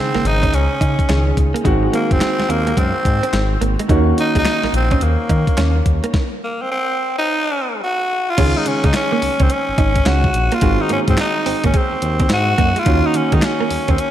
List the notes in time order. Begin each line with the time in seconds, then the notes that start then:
Already playing: C#3 D#3 G#3 C4 G#4
0.15 G#1 A#3, snare
0.25 G#1 D#4, muted clean electric guitar stroke, closed hi-hat
0.43 C#4, kick, closed hi-hat
0.53 C#2 C#4, closed hi-hat
0.81 C#3 D#4, kick, closed hi-hat
0.99 kick, closed hi-hat
1.08 C#2 D#3 G#3 C#4 G#4, snare, clap, closed hi-hat
1.27 muted clean electric guitar stroke
1.37 C#2, kick, closed hi-hat
1.54 A#3, closed hi-hat
1.64 G#1 D#3 G#3 C4 F#4, kick, closed hi-hat
1.83 muted clean electric guitar stroke
1.93 A#3, closed hi-hat
2.11 F#1 C4, kick, closed hi-hat
2.21 muted clean electric guitar stroke, snare, clap, closed hi-hat
2.39 D#2, snare
2.49 D#2 A#3 C4, closed hi-hat
2.67 A#3, closed hi-hat
2.77 F#2 G#3 C4, kick, closed hi-hat
2.95 muted clean electric guitar stroke
3.05 G#2, kick, closed hi-hat
3.23 C4, closed hi-hat
3.33 G#1, muted clean electric guitar stroke, snare, clap, closed hi-hat
3.61 G#1 A#3, closed hi-hat
3.79 G#3, closed hi-hat
3.88 D#2 D#3 A#3 C#4 D#4 F#4, kick, closed hi-hat
4.18 D#4, muted clean electric guitar stroke, closed hi-hat
4.35 C#2 G#3 D#4, kick, closed hi-hat
4.45 snare, clap, closed hi-hat
4.63 A#1 A#3, snare
4.73 A#1 C4, muted clean electric guitar stroke, closed hi-hat
4.91 C#4, kick, closed hi-hat
5.01 D#2 A#3, closed hi-hat
5.29 D#3 D#4, kick, closed hi-hat
5.47 kick, closed hi-hat
5.58 D#2 C#4, snare, clap, closed hi-hat
5.76 muted clean electric guitar stroke
5.86 D#2, kick, closed hi-hat
6.04 A#3, closed hi-hat
6.14 kick, snare
6.44 A#3
6.62 C4
6.71 C4
7.18 D#4
7.84 F#4
8.30 F4
8.37 C#2 D#3 G#3 C#4 G#4, kick, closed hi-hat, crash
8.58 D#4
8.66 C#3 C#4, muted clean electric guitar stroke, closed hi-hat
8.84 C#3 G#3 D#4, kick, closed hi-hat
8.94 C#4, snare, clap, closed hi-hat
9.12 A#3
9.22 C#2, muted clean electric guitar stroke, open hi-hat
9.40 C#2 C4 C#4, kick, closed hi-hat
9.50 C#4, closed hi-hat
9.69 G#1
9.78 G#1 D#4, kick, closed hi-hat
9.96 kick, closed hi-hat
10.06 C#2 C#4 F#4, snare, clap, closed hi-hat
10.24 muted clean electric guitar stroke, kick
10.34 A#1, closed hi-hat
10.52 A#3 F4, closed hi-hat
10.61 G#1 D#3 G#3 C4 F#4, kick, closed hi-hat
10.80 D#4, muted clean electric guitar stroke
10.89 G#2 A#3 C#4, closed hi-hat
11.08 G#2 C4, kick, closed hi-hat
11.17 D#4, muted clean electric guitar stroke, snare, clap, closed hi-hat
11.46 G#1 C4, open hi-hat
11.64 G#1 A#3 C#4, kick, closed hi-hat
11.74 G#3 C4, kick, closed hi-hat
11.92 D#2, muted clean electric guitar stroke
12.02 D#2, closed hi-hat
12.20 C4, kick, closed hi-hat
12.30 G#2 F#4, muted clean electric guitar stroke, snare, clap, closed hi-hat
12.58 F#2 A#3, kick, closed hi-hat
12.76 G#3 F4, closed hi-hat
12.85 D#2 D#3 A#3 C#4 D#4 F#4, kick, closed hi-hat
13.06 D#4
13.14 D#3 C#4, muted clean electric guitar stroke, closed hi-hat
13.32 D#3 G#3 D#4, kick, closed hi-hat
13.42 C#4, snare, clap, closed hi-hat
13.61 A#3
13.70 D#2, muted clean electric guitar stroke, open hi-hat
13.88 D#2 C4 C#4, kick, closed hi-hat
13.98 C#4, closed hi-hat